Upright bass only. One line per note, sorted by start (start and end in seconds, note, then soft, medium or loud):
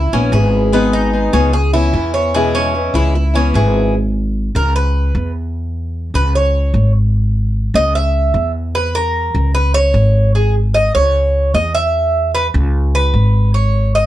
0.00 0.10 C#2 loud
0.13 0.31 A#1 medium
0.32 1.27 G#1 loud
1.33 1.89 C#2 loud
1.93 2.88 E2 loud
2.94 3.50 C#2 loud
3.54 4.48 G#1 loud
4.55 5.11 C#2 loud
5.15 6.09 E2 medium
6.14 6.70 C#2 loud
6.74 7.68 G#1 loud
7.74 8.30 C#2 loud
8.34 9.28 E2 loud
9.34 9.91 C#2 loud
9.94 10.88 G#1 loud
10.95 11.51 C#2 medium
11.54 12.48 E2 medium
12.54 13.10 C#2 loud
13.14 14.06 G#1 loud